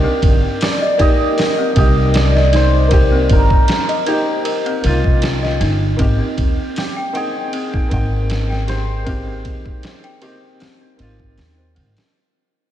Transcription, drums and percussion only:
0.22 kick, ride
0.61 snare, open hi-hat
0.99 kick, ride
1.38 snare, open hi-hat
1.76 kick, ride
2.14 snare, ride
2.37 snare
2.53 snare, ride
2.91 kick, ride
3.29 kick, ride
3.50 kick
3.68 snare, ride
3.89 ride
4.06 ride
4.45 ride
4.66 ride
4.84 ride
5.04 kick
5.22 snare, ride
5.45 snare
5.61 snare, ride
5.99 kick, ride
6.38 kick, ride
6.76 snare, open hi-hat
7.15 ride
7.53 ride
7.74 kick
7.91 kick, ride
8.30 snare, ride
8.52 snare
8.68 snare, ride
9.06 kick, ride
9.45 kick, ride
9.66 kick
9.83 snare, ride
10.04 ride
10.22 ride
10.60 snare, open hi-hat
10.99 ride
11.20 kick
11.38 snare, open hi-hat
11.76 ride
11.97 snare, open hi-hat

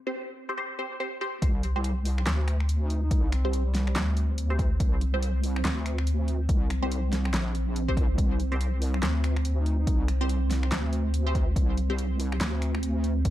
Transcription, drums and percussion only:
1.42 kick, closed hi-hat
1.63 closed hi-hat
1.84 closed hi-hat
2.05 open hi-hat
2.18 finger snap
2.26 snare, clap, closed hi-hat
2.48 finger snap, closed hi-hat
2.60 finger snap
2.69 closed hi-hat
2.90 closed hi-hat
3.11 kick, closed hi-hat
3.32 finger snap, closed hi-hat
3.53 closed hi-hat
3.75 snare, open hi-hat
3.87 finger snap
3.96 snare, clap, closed hi-hat
4.17 closed hi-hat
4.38 closed hi-hat
4.59 kick, closed hi-hat
4.80 kick, closed hi-hat
5.01 closed hi-hat
5.22 closed hi-hat
5.43 open hi-hat
5.56 finger snap
5.65 snare, clap, closed hi-hat
5.86 finger snap, closed hi-hat
5.98 finger snap
6.07 closed hi-hat
6.28 closed hi-hat
6.49 kick, closed hi-hat
6.70 finger snap, closed hi-hat
6.92 closed hi-hat
7.13 snare, open hi-hat
7.25 finger snap
7.34 snare, clap, closed hi-hat
7.55 closed hi-hat
7.76 closed hi-hat
7.88 kick
7.97 kick, closed hi-hat
8.18 kick, closed hi-hat
8.40 closed hi-hat
8.61 closed hi-hat
8.82 open hi-hat
8.94 finger snap
9.03 snare, clap, closed hi-hat
9.24 finger snap, closed hi-hat
9.37 finger snap
9.45 closed hi-hat
9.66 closed hi-hat
9.87 kick, closed hi-hat
10.08 finger snap, closed hi-hat
10.29 closed hi-hat
10.51 snare, open hi-hat
10.63 finger snap
10.72 snare, clap, closed hi-hat
10.93 closed hi-hat
11.14 closed hi-hat
11.35 kick, closed hi-hat
11.56 kick, closed hi-hat
11.77 closed hi-hat
11.98 closed hi-hat
12.20 open hi-hat
12.32 finger snap
12.41 snare, clap, closed hi-hat
12.62 finger snap, closed hi-hat
12.75 finger snap
12.83 closed hi-hat
13.04 closed hi-hat
13.25 kick, closed hi-hat

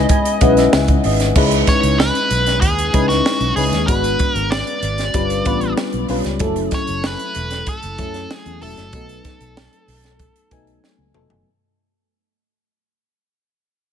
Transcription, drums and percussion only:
0.09 kick, closed hi-hat
0.25 closed hi-hat
0.41 kick, closed hi-hat
0.57 snare, closed hi-hat
0.73 snare
0.88 kick, closed hi-hat
1.04 open hi-hat
1.20 snare, closed hi-hat
1.35 kick, crash
1.51 closed hi-hat
1.67 kick, snare, closed hi-hat
1.83 closed hi-hat
2.00 snare
2.15 closed hi-hat
2.31 closed hi-hat
2.46 snare, closed hi-hat
2.62 kick, closed hi-hat
2.78 closed hi-hat
2.94 kick, closed hi-hat
3.10 snare, closed hi-hat
3.26 snare
3.41 closed hi-hat
3.57 open hi-hat
3.72 snare, closed hi-hat
3.88 kick, closed hi-hat
4.04 closed hi-hat
4.19 kick, closed hi-hat
4.36 closed hi-hat
4.52 snare
4.67 closed hi-hat
4.83 closed hi-hat
4.98 snare, closed hi-hat
5.14 kick, closed hi-hat
5.30 closed hi-hat
5.45 kick, closed hi-hat
5.61 closed hi-hat
5.77 snare
5.92 closed hi-hat
6.09 open hi-hat
6.24 snare, closed hi-hat
6.39 kick, closed hi-hat
6.56 closed hi-hat
6.71 kick, snare, closed hi-hat
6.87 closed hi-hat
7.04 snare
7.19 closed hi-hat
7.35 closed hi-hat
7.50 snare, closed hi-hat
7.66 kick, closed hi-hat
7.82 closed hi-hat
7.98 kick, closed hi-hat
8.14 snare, closed hi-hat
8.31 snare
8.46 closed hi-hat
8.61 open hi-hat
8.77 snare, closed hi-hat
8.93 kick, closed hi-hat
9.09 closed hi-hat
9.25 kick, snare, closed hi-hat
9.40 closed hi-hat
9.57 snare
9.73 closed hi-hat
9.88 open hi-hat
10.03 snare, closed hi-hat
10.19 kick, closed hi-hat
10.36 closed hi-hat
10.51 kick, closed hi-hat
10.67 closed hi-hat
10.84 snare
11.14 mid tom
11.30 floor tom

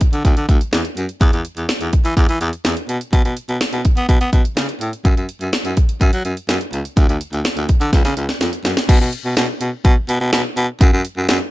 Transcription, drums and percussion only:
0.01 kick, closed hi-hat
0.13 closed hi-hat
0.25 kick, closed hi-hat
0.37 closed hi-hat
0.49 kick, closed hi-hat
0.61 closed hi-hat
0.73 snare, closed hi-hat
0.85 closed hi-hat
0.97 closed hi-hat
1.09 closed hi-hat
1.21 kick, closed hi-hat
1.33 closed hi-hat
1.45 closed hi-hat
1.57 closed hi-hat
1.69 snare, closed hi-hat
1.81 closed hi-hat
1.93 kick, closed hi-hat
2.05 closed hi-hat
2.17 kick, closed hi-hat
2.29 closed hi-hat
2.41 closed hi-hat
2.53 closed hi-hat
2.65 snare, closed hi-hat
2.77 closed hi-hat
2.89 closed hi-hat
3.01 closed hi-hat
3.13 kick, closed hi-hat
3.25 closed hi-hat
3.37 closed hi-hat
3.49 closed hi-hat
3.61 snare, closed hi-hat
3.73 closed hi-hat
3.85 kick, closed hi-hat
3.97 closed hi-hat
4.09 kick, closed hi-hat
4.21 closed hi-hat
4.33 kick, closed hi-hat
4.45 closed hi-hat
4.57 snare, closed hi-hat
4.69 closed hi-hat
4.81 closed hi-hat
4.93 closed hi-hat
5.05 kick, closed hi-hat
5.17 closed hi-hat
5.29 closed hi-hat
5.41 closed hi-hat
5.53 snare, closed hi-hat
5.65 closed hi-hat
5.77 kick, closed hi-hat
5.89 closed hi-hat
6.01 kick, closed hi-hat
6.13 closed hi-hat
6.25 closed hi-hat
6.37 closed hi-hat
6.49 snare, closed hi-hat
6.61 closed hi-hat
6.73 closed hi-hat
6.85 closed hi-hat
6.97 kick, closed hi-hat
7.09 closed hi-hat
7.21 closed hi-hat
7.33 closed hi-hat
7.45 snare, closed hi-hat
7.57 closed hi-hat
7.69 kick, closed hi-hat
7.81 closed hi-hat
7.93 kick, snare, closed hi-hat
8.05 snare, closed hi-hat
8.17 closed hi-hat
8.29 snare, closed hi-hat
8.41 snare, closed hi-hat
8.53 closed hi-hat
8.65 snare, closed hi-hat
8.77 snare, closed hi-hat
8.89 kick, closed hi-hat, crash
9.13 closed hi-hat
9.37 snare, closed hi-hat
9.61 closed hi-hat
9.85 kick, closed hi-hat
10.09 closed hi-hat
10.33 snare, closed hi-hat
10.57 closed hi-hat
10.81 kick, closed hi-hat
11.05 closed hi-hat
11.29 snare, closed hi-hat

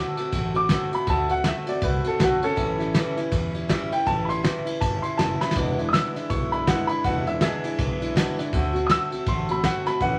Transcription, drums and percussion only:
0.17 snare, ride
0.32 kick, ride
0.55 ride
0.69 kick, snare, ride
0.92 ride
1.07 kick, ride
1.29 ride
1.44 snare, ride
1.67 ride
1.82 kick, ride
2.04 ride
2.19 kick, snare, ride
2.42 ride
2.57 kick, ride
2.80 snare, ride
2.95 snare, ride
3.17 snare, ride
3.32 kick, snare, ride
3.54 ride
3.69 kick, snare, ride
3.92 ride
4.06 kick, ride
4.30 snare, ride
4.44 snare, ride
4.67 ride
4.81 kick, snare, ride
5.03 ride
5.19 snare, ride
5.41 snare
5.51 snare
5.56 kick, ride
5.79 ride
5.94 snare, ride
6.16 snare, ride
6.30 kick, ride
6.53 ride
6.67 kick, snare, ride
6.89 ride
7.04 kick, ride
7.27 ride
7.41 snare, ride
7.64 ride
7.79 kick, ride
8.02 ride
8.16 kick, snare, ride
8.39 snare, ride
8.53 kick, ride
8.76 ride
8.89 snare, ride
9.12 ride
9.26 kick, ride
9.48 ride
9.64 kick, snare, ride
9.86 snare, ride
10.01 kick, ride

